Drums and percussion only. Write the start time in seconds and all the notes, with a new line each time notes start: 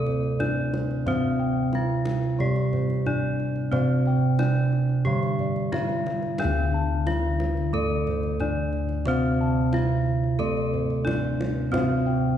0.06 kendang low
0.23 kendang slap
0.40 kendang slap, kendang high, kendang low
0.74 kendang slap, kendang high
0.91 kendang slap
1.07 kendang high, kendang low
1.73 kendang slap, kendang high
2.05 kendang slap, kendang high
2.23 kendang slap
2.40 kendang low
2.56 kendang slap
2.73 kendang low
2.90 kendang slap
3.06 kendang slap, kendang low
3.40 kendang slap
3.56 kendang slap
3.72 kendang low
4.06 kendang slap
4.39 kendang slap, kendang high
4.73 kendang slap
4.89 kendang slap
5.06 kendang low
5.23 kendang slap
5.39 kendang low
5.56 kendang slap
5.73 kendang slap, kendang high, kendang low
5.89 kendang slap
6.06 kendang slap, kendang high
6.22 kendang slap
6.38 kendang high, kendang low
7.07 kendang slap, kendang high
7.40 kendang slap, kendang high
7.57 kendang slap
7.73 kendang low
7.90 kendang slap
8.07 kendang low
8.23 kendang slap
8.40 kendang slap, kendang low
8.73 kendang slap
8.89 kendang slap
9.05 kendang low
9.73 kendang slap, kendang high
10.06 kendang slap
10.24 kendang slap
10.40 kendang low
10.57 kendang slap
10.74 kendang low
10.90 kendang slap
11.07 kendang slap, kendang high, kendang low
11.41 kendang slap, kendang high
11.74 kendang high, kendang low